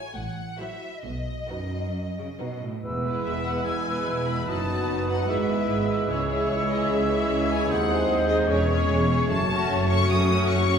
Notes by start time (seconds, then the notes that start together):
Already playing: G#5
0.16 A1 A2 F#5
0.59 F#3 E4 F#4 C5 E5
1.04 B1 B2 D#5
1.50 F#2 F#3 D#4 F#4 B4
2.19 C#3
2.39 B2 F#3 D#4 F#4 B4
2.62 A2
2.83 E1 E2 B3 E4 B4 E6
3.05 G#3 B3 E4 B4
3.25 E1 E2 E5
3.46 G#3 B3 E4 B4 F#5
3.65 E1 E2 G#5
3.86 G#3 B3 E4 B4
4.06 E1 E2
4.26 G#3 B3 E4 B4 B5
4.47 F#1 F#2 F#3 B3 D#4 F#4 B4 A5 D#6
4.68 F#3 B3 D#4 B4
4.87 F#1 F#2
5.08 F#3 B3 D#4 B4 F#5
5.27 G#1 G#2 E3 G#3 B3 E4 G#4 B4 E5 E6
5.47 E3 B3 E4 B4
5.68 G#1 G#2
5.88 E3 B3 E4 B4
6.08 C#2 E3 G#3 C#4 E4 G#4 C#5
6.29 E3 E4 G#4 C#5
6.48 C#2 C#5
6.69 E3 E4 G#4 C#5 D#5
6.88 C#2 E5
7.09 E3 E4 G#4 C#5
7.28 C#2
7.49 E3 E4 G#4 C#5 G#5
7.68 D#2 C4 C5 F#5 D#6
7.88 G#3 D#4 G#4 C5
8.08 D#2
8.28 G#3 D#4 G#4 C5 D#5
8.47 E1 E2 G#3 C#4 G#4 C#5 C#6
8.67 G#3 C#4 G#4 C#5
8.88 E1 E2
9.08 G#3 C#4 G#4 C#5
9.27 F#1 F#2 A3 C#4 F#4 A5
9.50 A3 C#4 F#4 C#5
9.69 F#1 F#2
9.88 A3 C#4 F#4 C#5 C#6
10.08 F#1 F#2 A3 C#4 D#6
10.28 A3 C#4 F#4 C#5
10.47 F#1 F#2 C#6
10.69 A3 C#4 F#4 C#5